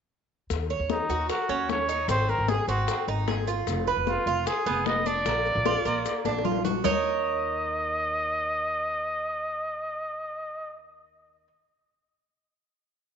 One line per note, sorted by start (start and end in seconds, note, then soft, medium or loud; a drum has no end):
0.50 0.79 D#2 loud
0.50 high bongo medium
0.50 high conga soft
0.50 maracas medium
0.70 1.09 C#5 medium
0.70 high conga soft
0.70 maracas soft
0.79 0.99 D#2 medium
0.90 1.27 D#4 medium
0.90 high bongo medium
0.90 high conga loud
0.90 maracas soft
1.09 1.28 D#2 medium
1.09 1.29 F#4 medium
1.09 high conga soft
1.09 maracas medium
1.29 1.72 F#4 medium
1.29 1.49 A#4 medium
1.29 high bongo medium
1.29 high conga soft
1.29 maracas medium
1.49 2.06 D#2 medium
1.49 1.88 C#4 medium
1.49 high conga soft
1.49 maracas soft
1.69 2.09 C#5 loud
1.69 high bongo medium
1.69 low bongo medium
1.69 high conga medium
1.69 maracas soft
1.89 2.08 D#4 medium
1.89 maracas medium
2.08 2.37 G#1 loud
2.08 2.47 C4 medium
2.08 2.31 C5 loud
2.08 high bongo medium
2.08 high conga soft
2.08 maracas medium
2.29 2.50 A#4 medium
2.29 high bongo soft
2.29 high conga soft
2.29 maracas soft
2.38 2.57 G#1 medium
2.48 2.68 G#4 medium
2.48 high bongo medium
2.48 high conga loud
2.48 maracas soft
2.67 2.87 G#1 medium
2.67 3.07 C4 medium
2.67 3.05 F#4 medium
2.67 high conga soft
2.67 maracas medium
2.88 high bongo medium
2.88 high conga soft
2.88 maracas medium
3.07 3.64 G#1 medium
3.07 3.27 D#4 medium
3.07 high bongo soft
3.07 high conga soft
3.07 maracas soft
3.28 3.47 G#4 medium
3.28 high bongo medium
3.28 low bongo medium
3.28 high conga medium
3.28 maracas soft
3.47 3.86 F4 medium
3.47 high bongo soft
3.47 high conga soft
3.47 maracas medium
3.67 3.95 F1 medium
3.67 high bongo medium
3.67 high conga soft
3.67 maracas medium
3.87 4.26 B4 medium
3.87 high conga soft
3.87 maracas soft
3.97 4.16 F1 medium
4.07 4.48 F4 medium
4.07 high bongo medium
4.07 high conga medium
4.07 maracas soft
4.26 4.45 F1 medium
4.26 4.46 F4 medium
4.26 high conga soft
4.26 maracas medium
4.46 4.88 G#4 medium
4.46 4.66 G#4 medium
4.46 high bongo medium
4.46 high conga soft
4.46 maracas medium
4.66 5.23 F1 medium
4.66 5.05 B3 medium
4.66 high conga soft
4.66 maracas soft
4.86 5.08 D#5 loud
4.86 high bongo medium
4.86 low bongo medium
4.86 high conga medium
4.86 maracas soft
5.06 5.25 D4 medium
5.06 6.45 D5 loud
5.06 high conga medium
5.06 maracas medium
5.25 5.54 A#1 medium
5.25 5.64 A#3 medium
5.25 high bongo medium
5.25 high conga soft
5.25 maracas medium
5.46 high bongo soft
5.46 high conga soft
5.46 maracas soft
5.55 5.74 A#1 loud
5.66 5.85 F4 medium
5.66 high bongo medium
5.66 high conga loud
5.66 maracas soft
5.85 6.04 A#1 medium
5.85 6.24 A#3 medium
5.85 high conga soft
5.85 maracas medium
6.05 high bongo medium
6.05 high conga soft
6.05 maracas medium
6.25 6.81 A#1 medium
6.25 6.44 D4 medium
6.25 high bongo medium
6.25 high conga medium
6.25 maracas soft
6.38 high bongo medium
6.45 6.64 F4 medium
6.45 low conga medium
6.45 maracas soft
6.52 low bongo medium
6.65 6.84 F#4 medium
6.65 low bongo loud
6.65 low conga medium
6.65 maracas medium
6.84 11.47 D#2 medium
6.84 11.47 D#4 medium
6.84 11.47 A#4 medium
6.84 11.47 C#5 medium
6.84 10.77 D#5 medium
6.84 low bongo loud
6.84 low conga loud
6.84 maracas medium